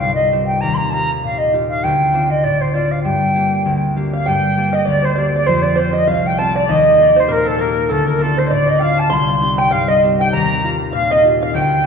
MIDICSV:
0, 0, Header, 1, 5, 480
1, 0, Start_track
1, 0, Key_signature, -2, "minor"
1, 0, Tempo, 302877
1, 1003, Time_signature, 4, 2, 24, 8
1, 18801, End_track
2, 0, Start_track
2, 0, Title_t, "Accordion"
2, 0, Program_c, 0, 21
2, 6575, Note_on_c, 0, 77, 57
2, 6756, Note_off_c, 0, 77, 0
2, 6772, Note_on_c, 0, 79, 69
2, 7399, Note_off_c, 0, 79, 0
2, 7466, Note_on_c, 0, 77, 46
2, 7516, Note_on_c, 0, 75, 55
2, 7520, Note_off_c, 0, 77, 0
2, 7715, Note_on_c, 0, 74, 66
2, 7725, Note_off_c, 0, 75, 0
2, 7994, Note_off_c, 0, 74, 0
2, 8006, Note_on_c, 0, 72, 61
2, 8210, Note_off_c, 0, 72, 0
2, 8212, Note_on_c, 0, 74, 61
2, 8352, Note_off_c, 0, 74, 0
2, 8531, Note_on_c, 0, 74, 68
2, 8687, Note_off_c, 0, 74, 0
2, 8701, Note_on_c, 0, 72, 70
2, 8966, Note_off_c, 0, 72, 0
2, 8997, Note_on_c, 0, 74, 57
2, 9185, Note_off_c, 0, 74, 0
2, 9196, Note_on_c, 0, 72, 53
2, 9454, Note_off_c, 0, 72, 0
2, 9463, Note_on_c, 0, 75, 57
2, 9639, Note_off_c, 0, 75, 0
2, 9666, Note_on_c, 0, 77, 63
2, 9929, Note_off_c, 0, 77, 0
2, 9958, Note_on_c, 0, 79, 70
2, 10127, Note_off_c, 0, 79, 0
2, 10158, Note_on_c, 0, 81, 79
2, 10415, Note_off_c, 0, 81, 0
2, 10438, Note_on_c, 0, 74, 76
2, 10611, Note_on_c, 0, 75, 76
2, 10626, Note_off_c, 0, 74, 0
2, 11097, Note_off_c, 0, 75, 0
2, 11107, Note_on_c, 0, 74, 56
2, 11370, Note_off_c, 0, 74, 0
2, 11383, Note_on_c, 0, 72, 69
2, 11578, Note_off_c, 0, 72, 0
2, 11587, Note_on_c, 0, 70, 64
2, 11702, Note_off_c, 0, 70, 0
2, 11859, Note_on_c, 0, 69, 70
2, 12038, Note_off_c, 0, 69, 0
2, 12060, Note_on_c, 0, 70, 70
2, 12532, Note_on_c, 0, 69, 72
2, 12542, Note_off_c, 0, 70, 0
2, 12777, Note_off_c, 0, 69, 0
2, 12811, Note_on_c, 0, 70, 55
2, 13014, Note_off_c, 0, 70, 0
2, 13014, Note_on_c, 0, 69, 64
2, 13284, Note_off_c, 0, 69, 0
2, 13286, Note_on_c, 0, 72, 61
2, 13491, Note_off_c, 0, 72, 0
2, 13508, Note_on_c, 0, 74, 76
2, 13962, Note_on_c, 0, 77, 83
2, 13987, Note_off_c, 0, 74, 0
2, 14214, Note_on_c, 0, 81, 86
2, 14240, Note_off_c, 0, 77, 0
2, 14411, Note_on_c, 0, 84, 83
2, 14415, Note_off_c, 0, 81, 0
2, 15176, Note_on_c, 0, 79, 62
2, 15200, Note_off_c, 0, 84, 0
2, 15395, Note_on_c, 0, 77, 72
2, 15398, Note_off_c, 0, 79, 0
2, 15650, Note_off_c, 0, 77, 0
2, 15676, Note_on_c, 0, 75, 72
2, 15868, Note_off_c, 0, 75, 0
2, 16170, Note_on_c, 0, 79, 86
2, 16367, Note_on_c, 0, 82, 90
2, 16376, Note_off_c, 0, 79, 0
2, 17064, Note_off_c, 0, 82, 0
2, 17302, Note_on_c, 0, 77, 73
2, 17586, Note_on_c, 0, 75, 76
2, 17592, Note_off_c, 0, 77, 0
2, 17784, Note_off_c, 0, 75, 0
2, 18078, Note_on_c, 0, 77, 69
2, 18279, Note_on_c, 0, 79, 73
2, 18291, Note_off_c, 0, 77, 0
2, 18801, Note_off_c, 0, 79, 0
2, 18801, End_track
3, 0, Start_track
3, 0, Title_t, "Five-string banjo"
3, 0, Program_c, 1, 105
3, 6552, Note_on_c, 1, 77, 56
3, 6743, Note_off_c, 1, 77, 0
3, 6752, Note_on_c, 1, 79, 70
3, 7451, Note_off_c, 1, 79, 0
3, 7493, Note_on_c, 1, 75, 63
3, 7692, Note_off_c, 1, 75, 0
3, 7692, Note_on_c, 1, 74, 69
3, 7954, Note_off_c, 1, 74, 0
3, 7961, Note_on_c, 1, 72, 60
3, 8162, Note_off_c, 1, 72, 0
3, 8168, Note_on_c, 1, 74, 63
3, 8329, Note_off_c, 1, 74, 0
3, 8493, Note_on_c, 1, 74, 70
3, 8656, Note_off_c, 1, 74, 0
3, 8663, Note_on_c, 1, 72, 73
3, 8920, Note_off_c, 1, 72, 0
3, 8927, Note_on_c, 1, 74, 60
3, 9116, Note_off_c, 1, 74, 0
3, 9123, Note_on_c, 1, 72, 66
3, 9389, Note_off_c, 1, 72, 0
3, 9398, Note_on_c, 1, 75, 71
3, 9604, Note_off_c, 1, 75, 0
3, 9627, Note_on_c, 1, 77, 79
3, 10115, Note_off_c, 1, 77, 0
3, 10122, Note_on_c, 1, 81, 80
3, 10389, Note_on_c, 1, 74, 68
3, 10397, Note_off_c, 1, 81, 0
3, 10596, Note_off_c, 1, 74, 0
3, 10602, Note_on_c, 1, 75, 71
3, 11340, Note_off_c, 1, 75, 0
3, 11346, Note_on_c, 1, 72, 70
3, 11540, Note_off_c, 1, 72, 0
3, 11544, Note_on_c, 1, 70, 75
3, 11801, Note_off_c, 1, 70, 0
3, 11808, Note_on_c, 1, 69, 71
3, 12012, Note_off_c, 1, 69, 0
3, 12018, Note_on_c, 1, 70, 76
3, 12473, Note_off_c, 1, 70, 0
3, 12506, Note_on_c, 1, 69, 78
3, 12763, Note_off_c, 1, 69, 0
3, 12786, Note_on_c, 1, 70, 74
3, 12970, Note_off_c, 1, 70, 0
3, 12977, Note_on_c, 1, 69, 66
3, 13238, Note_off_c, 1, 69, 0
3, 13268, Note_on_c, 1, 72, 66
3, 13462, Note_off_c, 1, 72, 0
3, 13478, Note_on_c, 1, 74, 86
3, 13734, Note_on_c, 1, 75, 74
3, 13757, Note_off_c, 1, 74, 0
3, 13950, Note_off_c, 1, 75, 0
3, 13956, Note_on_c, 1, 77, 75
3, 14404, Note_off_c, 1, 77, 0
3, 14418, Note_on_c, 1, 84, 92
3, 15177, Note_off_c, 1, 84, 0
3, 15184, Note_on_c, 1, 79, 81
3, 15381, Note_off_c, 1, 79, 0
3, 15388, Note_on_c, 1, 77, 85
3, 15661, Note_on_c, 1, 75, 70
3, 15674, Note_off_c, 1, 77, 0
3, 15860, Note_off_c, 1, 75, 0
3, 16179, Note_on_c, 1, 79, 84
3, 16361, Note_off_c, 1, 79, 0
3, 16375, Note_on_c, 1, 82, 80
3, 17068, Note_off_c, 1, 82, 0
3, 17322, Note_on_c, 1, 77, 71
3, 17575, Note_off_c, 1, 77, 0
3, 17612, Note_on_c, 1, 75, 76
3, 17798, Note_off_c, 1, 75, 0
3, 18109, Note_on_c, 1, 77, 85
3, 18306, Note_off_c, 1, 77, 0
3, 18322, Note_on_c, 1, 79, 76
3, 18801, Note_off_c, 1, 79, 0
3, 18801, End_track
4, 0, Start_track
4, 0, Title_t, "Flute"
4, 0, Program_c, 2, 73
4, 0, Note_on_c, 2, 77, 91
4, 219, Note_off_c, 2, 77, 0
4, 228, Note_on_c, 2, 75, 78
4, 462, Note_off_c, 2, 75, 0
4, 728, Note_on_c, 2, 79, 83
4, 962, Note_on_c, 2, 82, 89
4, 985, Note_off_c, 2, 79, 0
4, 1175, Note_on_c, 2, 84, 67
4, 1198, Note_off_c, 2, 82, 0
4, 1215, Note_on_c, 2, 82, 88
4, 1239, Note_off_c, 2, 84, 0
4, 1425, Note_on_c, 2, 81, 67
4, 1449, Note_off_c, 2, 82, 0
4, 1478, Note_on_c, 2, 82, 102
4, 1501, Note_off_c, 2, 81, 0
4, 1751, Note_off_c, 2, 82, 0
4, 1969, Note_on_c, 2, 77, 89
4, 2185, Note_on_c, 2, 75, 82
4, 2209, Note_off_c, 2, 77, 0
4, 2417, Note_off_c, 2, 75, 0
4, 2676, Note_on_c, 2, 77, 94
4, 2906, Note_on_c, 2, 79, 84
4, 2930, Note_off_c, 2, 77, 0
4, 3648, Note_on_c, 2, 75, 84
4, 3671, Note_off_c, 2, 79, 0
4, 3860, Note_on_c, 2, 74, 94
4, 3884, Note_off_c, 2, 75, 0
4, 4134, Note_on_c, 2, 72, 77
4, 4158, Note_off_c, 2, 74, 0
4, 4337, Note_on_c, 2, 74, 81
4, 4361, Note_off_c, 2, 72, 0
4, 4616, Note_on_c, 2, 77, 68
4, 4640, Note_off_c, 2, 74, 0
4, 4798, Note_off_c, 2, 77, 0
4, 4808, Note_on_c, 2, 79, 80
4, 6197, Note_off_c, 2, 79, 0
4, 6571, Note_on_c, 2, 77, 71
4, 6782, Note_on_c, 2, 79, 84
4, 6806, Note_off_c, 2, 77, 0
4, 7517, Note_on_c, 2, 75, 73
4, 7540, Note_off_c, 2, 79, 0
4, 7720, Note_off_c, 2, 75, 0
4, 7747, Note_on_c, 2, 74, 83
4, 7998, Note_on_c, 2, 72, 75
4, 8021, Note_off_c, 2, 74, 0
4, 8217, Note_on_c, 2, 74, 77
4, 8241, Note_off_c, 2, 72, 0
4, 8316, Note_off_c, 2, 74, 0
4, 8326, Note_on_c, 2, 74, 70
4, 8499, Note_off_c, 2, 74, 0
4, 8512, Note_on_c, 2, 74, 94
4, 8658, Note_on_c, 2, 72, 81
4, 8682, Note_off_c, 2, 74, 0
4, 8907, Note_on_c, 2, 74, 75
4, 8931, Note_off_c, 2, 72, 0
4, 9170, Note_on_c, 2, 72, 70
4, 9194, Note_off_c, 2, 74, 0
4, 9404, Note_off_c, 2, 72, 0
4, 9413, Note_on_c, 2, 75, 76
4, 9637, Note_on_c, 2, 77, 82
4, 9661, Note_off_c, 2, 75, 0
4, 9925, Note_on_c, 2, 79, 78
4, 9949, Note_off_c, 2, 77, 0
4, 10114, Note_on_c, 2, 81, 82
4, 10138, Note_off_c, 2, 79, 0
4, 10391, Note_on_c, 2, 74, 83
4, 10415, Note_off_c, 2, 81, 0
4, 10596, Note_off_c, 2, 74, 0
4, 10622, Note_on_c, 2, 75, 87
4, 11404, Note_on_c, 2, 72, 80
4, 11428, Note_off_c, 2, 75, 0
4, 11592, Note_on_c, 2, 70, 87
4, 11615, Note_off_c, 2, 72, 0
4, 11841, Note_on_c, 2, 69, 89
4, 11865, Note_off_c, 2, 70, 0
4, 12050, Note_on_c, 2, 70, 77
4, 12074, Note_off_c, 2, 69, 0
4, 12543, Note_on_c, 2, 69, 82
4, 12566, Note_off_c, 2, 70, 0
4, 12801, Note_off_c, 2, 69, 0
4, 12810, Note_on_c, 2, 70, 75
4, 13025, Note_on_c, 2, 69, 95
4, 13049, Note_off_c, 2, 70, 0
4, 13290, Note_on_c, 2, 72, 69
4, 13313, Note_off_c, 2, 69, 0
4, 13429, Note_on_c, 2, 75, 69
4, 13452, Note_off_c, 2, 72, 0
4, 13505, Note_on_c, 2, 74, 101
4, 13529, Note_off_c, 2, 75, 0
4, 13777, Note_on_c, 2, 75, 80
4, 13801, Note_off_c, 2, 74, 0
4, 13930, Note_on_c, 2, 79, 59
4, 13953, Note_off_c, 2, 75, 0
4, 13978, Note_on_c, 2, 77, 106
4, 14001, Note_off_c, 2, 79, 0
4, 14252, Note_on_c, 2, 81, 95
4, 14276, Note_off_c, 2, 77, 0
4, 14472, Note_on_c, 2, 84, 95
4, 14496, Note_off_c, 2, 81, 0
4, 15192, Note_on_c, 2, 79, 87
4, 15216, Note_off_c, 2, 84, 0
4, 15403, Note_on_c, 2, 77, 98
4, 15427, Note_off_c, 2, 79, 0
4, 15660, Note_on_c, 2, 75, 88
4, 15684, Note_off_c, 2, 77, 0
4, 15874, Note_off_c, 2, 75, 0
4, 16143, Note_on_c, 2, 79, 87
4, 16341, Note_off_c, 2, 79, 0
4, 16358, Note_on_c, 2, 82, 94
4, 16955, Note_off_c, 2, 82, 0
4, 17325, Note_on_c, 2, 77, 98
4, 17624, Note_on_c, 2, 75, 93
4, 17648, Note_off_c, 2, 77, 0
4, 17818, Note_off_c, 2, 75, 0
4, 18101, Note_on_c, 2, 77, 84
4, 18283, Note_off_c, 2, 77, 0
4, 18295, Note_on_c, 2, 79, 87
4, 18801, Note_off_c, 2, 79, 0
4, 18801, End_track
5, 0, Start_track
5, 0, Title_t, "Harp"
5, 0, Program_c, 3, 46
5, 0, Note_on_c, 3, 36, 69
5, 0, Note_on_c, 3, 60, 46
5, 0, Note_on_c, 3, 63, 35
5, 0, Note_on_c, 3, 65, 47
5, 0, Note_on_c, 3, 67, 46
5, 54, Note_on_c, 3, 43, 58
5, 502, Note_off_c, 3, 60, 0
5, 508, Note_on_c, 3, 60, 47
5, 517, Note_off_c, 3, 63, 0
5, 517, Note_off_c, 3, 67, 0
5, 524, Note_on_c, 3, 63, 42
5, 524, Note_on_c, 3, 67, 49
5, 1000, Note_on_c, 3, 39, 62
5, 1082, Note_off_c, 3, 36, 0
5, 1082, Note_off_c, 3, 43, 0
5, 1462, Note_off_c, 3, 63, 0
5, 1469, Note_on_c, 3, 63, 42
5, 1472, Note_off_c, 3, 65, 0
5, 1478, Note_off_c, 3, 67, 0
5, 1478, Note_on_c, 3, 65, 38
5, 1485, Note_on_c, 3, 67, 45
5, 1960, Note_on_c, 3, 46, 53
5, 2416, Note_off_c, 3, 63, 0
5, 2423, Note_on_c, 3, 63, 52
5, 2428, Note_off_c, 3, 65, 0
5, 2433, Note_off_c, 3, 67, 0
5, 2434, Note_on_c, 3, 65, 44
5, 2439, Note_on_c, 3, 67, 53
5, 2915, Note_on_c, 3, 38, 65
5, 2999, Note_off_c, 3, 39, 0
5, 2999, Note_off_c, 3, 46, 0
5, 3010, Note_off_c, 3, 63, 0
5, 3376, Note_off_c, 3, 60, 0
5, 3383, Note_on_c, 3, 60, 38
5, 3391, Note_off_c, 3, 65, 0
5, 3394, Note_on_c, 3, 62, 37
5, 3397, Note_on_c, 3, 65, 50
5, 3860, Note_on_c, 3, 45, 60
5, 4333, Note_off_c, 3, 60, 0
5, 4339, Note_on_c, 3, 60, 45
5, 4345, Note_off_c, 3, 62, 0
5, 4347, Note_off_c, 3, 65, 0
5, 4352, Note_on_c, 3, 62, 40
5, 4354, Note_on_c, 3, 65, 58
5, 4824, Note_on_c, 3, 43, 61
5, 4916, Note_off_c, 3, 38, 0
5, 4916, Note_off_c, 3, 45, 0
5, 5299, Note_on_c, 3, 58, 39
5, 5305, Note_off_c, 3, 62, 0
5, 5311, Note_on_c, 3, 62, 36
5, 5318, Note_off_c, 3, 67, 0
5, 5324, Note_on_c, 3, 67, 41
5, 5791, Note_on_c, 3, 38, 60
5, 5875, Note_off_c, 3, 43, 0
5, 6272, Note_off_c, 3, 58, 0
5, 6278, Note_on_c, 3, 58, 50
5, 6279, Note_off_c, 3, 62, 0
5, 6286, Note_on_c, 3, 62, 40
5, 6292, Note_off_c, 3, 67, 0
5, 6299, Note_on_c, 3, 67, 50
5, 6775, Note_on_c, 3, 43, 66
5, 6834, Note_off_c, 3, 38, 0
5, 7234, Note_off_c, 3, 58, 0
5, 7240, Note_on_c, 3, 58, 37
5, 7244, Note_off_c, 3, 67, 0
5, 7251, Note_on_c, 3, 67, 38
5, 7260, Note_on_c, 3, 69, 46
5, 7716, Note_on_c, 3, 38, 56
5, 7793, Note_off_c, 3, 43, 0
5, 8185, Note_off_c, 3, 58, 0
5, 8191, Note_on_c, 3, 58, 55
5, 8193, Note_off_c, 3, 67, 0
5, 8199, Note_on_c, 3, 67, 45
5, 8210, Note_off_c, 3, 69, 0
5, 8216, Note_on_c, 3, 69, 55
5, 8352, Note_off_c, 3, 65, 0
5, 8682, Note_on_c, 3, 41, 67
5, 8753, Note_off_c, 3, 38, 0
5, 9093, Note_off_c, 3, 60, 0
5, 9150, Note_on_c, 3, 60, 44
5, 9157, Note_on_c, 3, 65, 39
5, 9159, Note_off_c, 3, 69, 0
5, 9165, Note_on_c, 3, 69, 44
5, 9260, Note_off_c, 3, 58, 0
5, 9620, Note_on_c, 3, 36, 56
5, 9712, Note_off_c, 3, 41, 0
5, 10103, Note_off_c, 3, 60, 0
5, 10109, Note_on_c, 3, 60, 51
5, 10110, Note_off_c, 3, 65, 0
5, 10114, Note_off_c, 3, 69, 0
5, 10116, Note_on_c, 3, 65, 42
5, 10121, Note_on_c, 3, 69, 62
5, 10588, Note_on_c, 3, 39, 76
5, 10673, Note_off_c, 3, 36, 0
5, 10683, Note_off_c, 3, 62, 0
5, 11060, Note_on_c, 3, 58, 43
5, 11063, Note_on_c, 3, 63, 37
5, 11064, Note_off_c, 3, 67, 0
5, 11071, Note_on_c, 3, 67, 43
5, 11155, Note_off_c, 3, 69, 0
5, 11548, Note_on_c, 3, 46, 55
5, 12027, Note_off_c, 3, 58, 0
5, 12033, Note_on_c, 3, 58, 56
5, 12041, Note_off_c, 3, 63, 0
5, 12047, Note_on_c, 3, 63, 42
5, 12048, Note_off_c, 3, 67, 0
5, 12054, Note_on_c, 3, 67, 53
5, 12520, Note_on_c, 3, 38, 74
5, 12594, Note_off_c, 3, 39, 0
5, 12594, Note_off_c, 3, 46, 0
5, 12615, Note_off_c, 3, 63, 0
5, 12983, Note_off_c, 3, 60, 0
5, 12989, Note_on_c, 3, 60, 45
5, 13000, Note_off_c, 3, 65, 0
5, 13003, Note_on_c, 3, 62, 43
5, 13006, Note_on_c, 3, 65, 48
5, 13479, Note_on_c, 3, 45, 57
5, 13574, Note_off_c, 3, 58, 0
5, 13954, Note_off_c, 3, 60, 0
5, 13960, Note_on_c, 3, 60, 50
5, 13964, Note_off_c, 3, 62, 0
5, 13966, Note_off_c, 3, 65, 0
5, 13970, Note_on_c, 3, 62, 47
5, 13972, Note_on_c, 3, 65, 49
5, 14437, Note_on_c, 3, 36, 67
5, 14517, Note_off_c, 3, 38, 0
5, 14517, Note_off_c, 3, 45, 0
5, 14900, Note_off_c, 3, 60, 0
5, 14906, Note_on_c, 3, 60, 37
5, 14914, Note_on_c, 3, 63, 42
5, 14919, Note_off_c, 3, 67, 0
5, 14925, Note_on_c, 3, 67, 45
5, 15009, Note_off_c, 3, 62, 0
5, 15398, Note_on_c, 3, 43, 60
5, 15878, Note_off_c, 3, 60, 0
5, 15885, Note_on_c, 3, 60, 53
5, 15886, Note_off_c, 3, 63, 0
5, 15892, Note_on_c, 3, 63, 49
5, 15901, Note_off_c, 3, 67, 0
5, 15907, Note_on_c, 3, 67, 59
5, 16367, Note_on_c, 3, 39, 68
5, 16440, Note_off_c, 3, 36, 0
5, 16440, Note_off_c, 3, 43, 0
5, 16852, Note_off_c, 3, 63, 0
5, 16858, Note_on_c, 3, 63, 43
5, 16863, Note_off_c, 3, 65, 0
5, 16864, Note_off_c, 3, 67, 0
5, 16869, Note_on_c, 3, 65, 38
5, 16871, Note_on_c, 3, 67, 47
5, 17346, Note_on_c, 3, 46, 59
5, 17796, Note_off_c, 3, 63, 0
5, 17802, Note_on_c, 3, 63, 51
5, 17808, Note_off_c, 3, 65, 0
5, 17815, Note_on_c, 3, 65, 46
5, 17816, Note_off_c, 3, 67, 0
5, 17822, Note_on_c, 3, 67, 56
5, 18286, Note_on_c, 3, 38, 66
5, 18362, Note_off_c, 3, 39, 0
5, 18362, Note_off_c, 3, 46, 0
5, 18381, Note_off_c, 3, 63, 0
5, 18741, Note_off_c, 3, 60, 0
5, 18747, Note_on_c, 3, 60, 47
5, 18754, Note_off_c, 3, 65, 0
5, 18801, Note_off_c, 3, 38, 0
5, 18801, Note_off_c, 3, 60, 0
5, 18801, Note_off_c, 3, 67, 0
5, 18801, End_track
0, 0, End_of_file